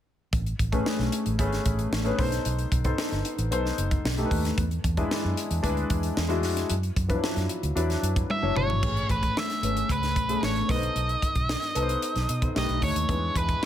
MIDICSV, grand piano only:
0, 0, Header, 1, 2, 480
1, 0, Start_track
1, 0, Key_signature, 3, "major"
1, 0, Tempo, 531444
1, 296, Time_signature, 4, 2, 24, 8
1, 12332, End_track
2, 0, Start_track
2, 0, Title_t, "Grand piano"
2, 0, Program_c, 0, 0
2, 480, Control_c, 0, 64, 127
2, 651, Note_on_c, 0, 57, 82
2, 652, Note_on_c, 0, 61, 79
2, 657, Note_on_c, 0, 68, 77
2, 661, Note_on_c, 0, 71, 93
2, 1121, Note_off_c, 0, 57, 0
2, 1122, Note_off_c, 0, 61, 0
2, 1124, Note_off_c, 0, 68, 0
2, 1126, Note_off_c, 0, 71, 0
2, 1254, Note_on_c, 0, 57, 87
2, 1257, Note_on_c, 0, 61, 83
2, 1260, Note_on_c, 0, 68, 81
2, 1266, Note_on_c, 0, 71, 100
2, 1722, Note_off_c, 0, 57, 0
2, 1724, Note_off_c, 0, 61, 0
2, 1726, Note_off_c, 0, 68, 0
2, 1728, Note_off_c, 0, 71, 0
2, 1846, Note_on_c, 0, 57, 82
2, 1850, Note_on_c, 0, 61, 83
2, 1854, Note_on_c, 0, 68, 81
2, 1860, Note_on_c, 0, 71, 95
2, 1968, Note_on_c, 0, 59, 81
2, 1970, Note_off_c, 0, 57, 0
2, 1970, Note_on_c, 0, 63, 75
2, 1972, Note_off_c, 0, 61, 0
2, 1975, Note_off_c, 0, 68, 0
2, 1976, Note_on_c, 0, 69, 71
2, 1977, Note_off_c, 0, 71, 0
2, 1980, Note_on_c, 0, 72, 93
2, 1987, Control_c, 0, 64, 0
2, 2150, Control_c, 0, 64, 127
2, 2451, Note_off_c, 0, 59, 0
2, 2452, Note_off_c, 0, 63, 0
2, 2455, Note_off_c, 0, 69, 0
2, 2457, Note_off_c, 0, 72, 0
2, 2568, Note_on_c, 0, 59, 78
2, 2569, Note_on_c, 0, 63, 70
2, 2575, Note_on_c, 0, 69, 75
2, 2578, Note_on_c, 0, 72, 85
2, 3039, Note_off_c, 0, 59, 0
2, 3040, Note_off_c, 0, 63, 0
2, 3043, Note_off_c, 0, 69, 0
2, 3044, Note_off_c, 0, 72, 0
2, 3172, Note_on_c, 0, 59, 81
2, 3175, Note_on_c, 0, 63, 73
2, 3179, Note_on_c, 0, 69, 74
2, 3184, Note_on_c, 0, 72, 94
2, 3641, Note_off_c, 0, 59, 0
2, 3643, Note_off_c, 0, 63, 0
2, 3645, Note_off_c, 0, 69, 0
2, 3647, Note_off_c, 0, 72, 0
2, 3666, Control_c, 0, 64, 0
2, 3769, Note_on_c, 0, 57, 76
2, 3776, Note_on_c, 0, 63, 68
2, 3779, Note_on_c, 0, 67, 68
2, 3781, Note_on_c, 0, 69, 71
2, 3824, Control_c, 0, 64, 127
2, 3835, Note_off_c, 0, 69, 0
2, 3839, Note_on_c, 0, 71, 91
2, 4132, Note_off_c, 0, 57, 0
2, 4135, Note_off_c, 0, 63, 0
2, 4136, Note_off_c, 0, 67, 0
2, 4144, Control_c, 0, 64, 0
2, 4166, Note_off_c, 0, 71, 0
2, 4300, Control_c, 0, 64, 127
2, 4492, Note_on_c, 0, 56, 88
2, 4493, Note_on_c, 0, 62, 82
2, 4498, Note_on_c, 0, 64, 80
2, 4500, Note_on_c, 0, 71, 97
2, 4961, Note_off_c, 0, 56, 0
2, 4961, Note_off_c, 0, 62, 0
2, 4964, Note_off_c, 0, 64, 0
2, 4965, Note_off_c, 0, 71, 0
2, 5081, Note_on_c, 0, 56, 91
2, 5084, Note_on_c, 0, 62, 90
2, 5089, Note_on_c, 0, 64, 80
2, 5092, Note_on_c, 0, 71, 102
2, 5555, Note_off_c, 0, 56, 0
2, 5557, Note_off_c, 0, 62, 0
2, 5559, Note_off_c, 0, 64, 0
2, 5561, Note_off_c, 0, 71, 0
2, 5676, Note_on_c, 0, 56, 87
2, 5681, Note_on_c, 0, 62, 78
2, 5685, Note_on_c, 0, 64, 82
2, 5689, Note_on_c, 0, 66, 94
2, 6045, Note_off_c, 0, 56, 0
2, 6047, Note_off_c, 0, 62, 0
2, 6049, Note_off_c, 0, 64, 0
2, 6051, Note_off_c, 0, 66, 0
2, 6065, Control_c, 0, 64, 0
2, 6201, Control_c, 0, 64, 127
2, 6398, Note_on_c, 0, 53, 63
2, 6405, Note_on_c, 0, 62, 72
2, 6405, Note_on_c, 0, 64, 70
2, 6410, Note_on_c, 0, 71, 85
2, 6456, Note_on_c, 0, 54, 76
2, 6463, Note_off_c, 0, 53, 0
2, 6877, Note_off_c, 0, 62, 0
2, 6878, Note_off_c, 0, 64, 0
2, 6880, Note_off_c, 0, 71, 0
2, 6903, Note_off_c, 0, 54, 0
2, 7003, Note_on_c, 0, 54, 78
2, 7004, Note_on_c, 0, 62, 81
2, 7008, Note_on_c, 0, 64, 73
2, 7011, Note_on_c, 0, 71, 91
2, 7477, Note_off_c, 0, 54, 0
2, 7477, Note_off_c, 0, 62, 0
2, 7479, Note_off_c, 0, 64, 0
2, 7481, Note_off_c, 0, 71, 0
2, 7604, Note_on_c, 0, 54, 75
2, 7609, Note_on_c, 0, 62, 69
2, 7612, Note_on_c, 0, 64, 65
2, 7614, Note_on_c, 0, 73, 83
2, 7968, Note_on_c, 0, 57, 64
2, 7968, Note_on_c, 0, 61, 59
2, 7969, Note_off_c, 0, 54, 0
2, 7972, Note_off_c, 0, 62, 0
2, 7972, Note_on_c, 0, 68, 56
2, 7974, Note_off_c, 0, 64, 0
2, 7974, Note_off_c, 0, 73, 0
2, 7977, Note_on_c, 0, 71, 70
2, 7988, Control_c, 0, 64, 0
2, 8122, Control_c, 0, 64, 127
2, 8533, Note_off_c, 0, 57, 0
2, 8533, Note_off_c, 0, 61, 0
2, 8536, Note_off_c, 0, 68, 0
2, 8538, Note_off_c, 0, 71, 0
2, 8692, Note_on_c, 0, 57, 61
2, 8697, Note_on_c, 0, 61, 54
2, 8700, Note_on_c, 0, 68, 52
2, 8703, Note_on_c, 0, 71, 63
2, 9162, Note_off_c, 0, 57, 0
2, 9165, Note_off_c, 0, 61, 0
2, 9166, Note_off_c, 0, 68, 0
2, 9168, Note_off_c, 0, 71, 0
2, 9290, Note_on_c, 0, 57, 67
2, 9295, Note_on_c, 0, 61, 61
2, 9298, Note_on_c, 0, 68, 62
2, 9301, Note_on_c, 0, 69, 59
2, 9356, Note_off_c, 0, 69, 0
2, 9361, Note_on_c, 0, 71, 73
2, 9644, Note_off_c, 0, 71, 0
2, 9649, Note_on_c, 0, 59, 67
2, 9652, Note_on_c, 0, 63, 64
2, 9653, Note_off_c, 0, 57, 0
2, 9654, Note_on_c, 0, 69, 66
2, 9656, Note_off_c, 0, 61, 0
2, 9658, Note_off_c, 0, 68, 0
2, 9658, Note_on_c, 0, 71, 64
2, 9666, Control_c, 0, 64, 0
2, 9715, Note_off_c, 0, 71, 0
2, 9715, Note_on_c, 0, 72, 74
2, 9815, Control_c, 0, 64, 127
2, 10422, Note_off_c, 0, 59, 0
2, 10423, Note_off_c, 0, 63, 0
2, 10425, Note_off_c, 0, 69, 0
2, 10455, Note_off_c, 0, 72, 0
2, 10612, Note_on_c, 0, 59, 82
2, 10614, Note_on_c, 0, 63, 73
2, 10619, Note_on_c, 0, 69, 79
2, 10621, Note_on_c, 0, 71, 77
2, 10677, Note_off_c, 0, 71, 0
2, 10680, Note_on_c, 0, 72, 85
2, 11084, Note_off_c, 0, 59, 0
2, 11085, Note_off_c, 0, 63, 0
2, 11087, Note_off_c, 0, 69, 0
2, 11118, Note_off_c, 0, 72, 0
2, 11213, Note_on_c, 0, 59, 62
2, 11216, Note_on_c, 0, 63, 54
2, 11219, Note_on_c, 0, 69, 53
2, 11225, Note_on_c, 0, 72, 63
2, 11326, Note_off_c, 0, 63, 0
2, 11335, Note_on_c, 0, 57, 78
2, 11336, Note_off_c, 0, 59, 0
2, 11339, Note_off_c, 0, 69, 0
2, 11339, Note_on_c, 0, 63, 71
2, 11342, Note_off_c, 0, 72, 0
2, 11342, Note_on_c, 0, 67, 69
2, 11346, Note_on_c, 0, 70, 64
2, 11350, Control_c, 0, 64, 0
2, 11400, Note_off_c, 0, 70, 0
2, 11404, Note_on_c, 0, 71, 84
2, 11517, Control_c, 0, 64, 127
2, 11721, Note_off_c, 0, 57, 0
2, 11724, Note_off_c, 0, 63, 0
2, 11725, Note_off_c, 0, 67, 0
2, 11756, Note_off_c, 0, 71, 0
2, 11819, Note_on_c, 0, 56, 68
2, 11822, Note_on_c, 0, 62, 58
2, 11826, Note_on_c, 0, 64, 61
2, 11831, Note_on_c, 0, 71, 67
2, 11832, Control_c, 0, 64, 0
2, 11999, Control_c, 0, 64, 127
2, 12332, Note_off_c, 0, 56, 0
2, 12332, Note_off_c, 0, 62, 0
2, 12332, Note_off_c, 0, 64, 0
2, 12332, Note_off_c, 0, 71, 0
2, 12332, End_track
0, 0, End_of_file